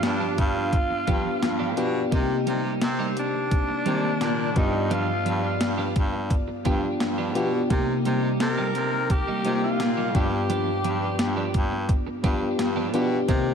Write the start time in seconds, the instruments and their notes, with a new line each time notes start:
Already playing: fm electric piano G2 B3 D4 F4 G4
0.03 baritone saxophone G2, alto saxophone D4, muted clean electric guitar stroke, snare, closed hi-hat
0.20 clean electric guitar F3 B3 D4 G4
0.37 baritone saxophone G2, alto saxophone F4, muted clean electric guitar stroke, kick, closed hi-hat
0.55 muted clean electric guitar stroke
0.73 kick, closed hi-hat
0.90 muted clean electric guitar stroke
1.07 baritone saxophone G2, clean electric guitar F3 B3 D4 G4, fm electric piano B3 D4 F4 G4, kick, closed hi-hat
1.25 muted clean electric guitar stroke
1.42 baritone saxophone G2, muted clean electric guitar stroke, snare, closed hi-hat
1.59 clean electric guitar F3 B3 D4 G4
1.77 baritone saxophone B2, clean electric guitar F3 B3 D4 G4, fm electric piano B3 D4 F4 G4, closed hi-hat
1.94 muted clean electric guitar stroke
2.12 baritone saxophone C3, fm electric piano C3 A#3 C4 D#4 G4, clean electric guitar G3 A#3 D#4 G4, kick, closed hi-hat
2.46 baritone saxophone C3, clean electric guitar G3 A#3 D#4 G4, closed hi-hat
2.64 clean electric guitar G3 A#3 D#4 G4
2.81 baritone saxophone C3, alto saxophone C4, muted clean electric guitar stroke, snare, closed hi-hat
2.99 clean electric guitar G3 A#3 D#4 G4
3.16 alto saxophone D4, muted clean electric guitar stroke, closed hi-hat
3.34 muted clean electric guitar stroke
3.51 kick, closed hi-hat
3.69 muted clean electric guitar stroke
3.86 baritone saxophone C3, fm electric piano D#3 A#3 C4 G4, clean electric guitar G3 A#3 D#4 G4, closed hi-hat
4.03 muted clean electric guitar stroke
4.21 baritone saxophone A#2, muted clean electric guitar stroke, snare, closed hi-hat
4.38 muted clean electric guitar stroke
4.56 baritone saxophone G2, fm electric piano G2 B3 F4 G4 D5, alto saxophone D#4, kick, closed hi-hat
4.73 muted clean electric guitar stroke
4.90 clean electric guitar F3 B3 D4 G4, alto saxophone F4, closed hi-hat
5.25 baritone saxophone G2, clean electric guitar F3 B3 D4 G4, closed hi-hat
5.43 clean electric guitar F3 B3 D4 G4
5.61 baritone saxophone G2, muted clean electric guitar stroke, snare, closed hi-hat
5.78 clean electric guitar F3 B3 D4 G4
5.95 baritone saxophone G2, muted clean electric guitar stroke, kick, closed hi-hat
6.13 muted clean electric guitar stroke
6.30 kick, closed hi-hat
6.48 muted clean electric guitar stroke
6.65 baritone saxophone G2, clean electric guitar F3 B3 D4 G4, fm electric piano B3 D4 F4 G4, kick, closed hi-hat
6.83 muted clean electric guitar stroke
7.00 baritone saxophone G2, muted clean electric guitar stroke, snare, closed hi-hat
7.18 clean electric guitar F3 B3 D4 G4
7.35 baritone saxophone B2, clean electric guitar F3 B3 D4 G4, fm electric piano B3 D4 F4 G4, closed hi-hat
7.53 muted clean electric guitar stroke
7.70 fm electric piano C3 A#3 C4 D#4 G4, baritone saxophone C3, clean electric guitar G3 A#3 D#4 G4, kick, closed hi-hat
8.05 baritone saxophone C3, clean electric guitar G3 A#3 D#4 G4, closed hi-hat
8.23 clean electric guitar G3 A#3 D#4 G4
8.40 baritone saxophone C3, alto saxophone A#4, muted clean electric guitar stroke, snare, closed hi-hat
8.58 clean electric guitar G3 A#3 D#4 G4
8.75 baritone saxophone C3, muted clean electric guitar stroke, closed hi-hat
8.93 muted clean electric guitar stroke
9.10 alto saxophone G4, muted clean electric guitar stroke, kick, closed hi-hat
9.27 clean electric guitar G3 A#3 D#4 G4
9.45 baritone saxophone C3, clean electric guitar G3 A#3 D#4 G4, fm electric piano A#3 C4 D#4 F4, closed hi-hat
9.53 fm electric piano G4
9.63 alto saxophone F4, muted clean electric guitar stroke
9.80 baritone saxophone A#2, muted clean electric guitar stroke, snare, closed hi-hat
9.97 clean electric guitar G3 A#3 D#4 G4
10.15 fm electric piano G2 B3 D4 F4 G4, baritone saxophone G2, clean electric guitar F3 B3 D4 G4, alto saxophone G4, kick, closed hi-hat
10.32 muted clean electric guitar stroke
10.49 clean electric guitar F3 B3 D4 G4, closed hi-hat
10.84 baritone saxophone G2, clean electric guitar F3 B3 D4 G4, closed hi-hat
11.02 clean electric guitar F3 B3 D4 G4
11.19 baritone saxophone G2, muted clean electric guitar stroke, snare, closed hi-hat
11.36 clean electric guitar F3 B3 D4 G4
11.54 baritone saxophone G2, muted clean electric guitar stroke, kick, closed hi-hat
11.71 muted clean electric guitar stroke
11.89 kick, closed hi-hat
12.07 muted clean electric guitar stroke
12.23 baritone saxophone G2, clean electric guitar F3 B3 D4 G4, fm electric piano B3 D4 F4 G4, kick, closed hi-hat
12.41 muted clean electric guitar stroke
12.59 baritone saxophone G2, muted clean electric guitar stroke, snare, closed hi-hat
12.76 clean electric guitar F3 B3 D4 G4
12.93 baritone saxophone B2, clean electric guitar F3 B3 D4 G4, fm electric piano B3 D4 F4 G4, closed hi-hat
13.11 muted clean electric guitar stroke
13.28 baritone saxophone C3, fm electric piano C3 A#3 C4 D#4 G4, clean electric guitar D#3 A#3 C4 G4, kick, closed hi-hat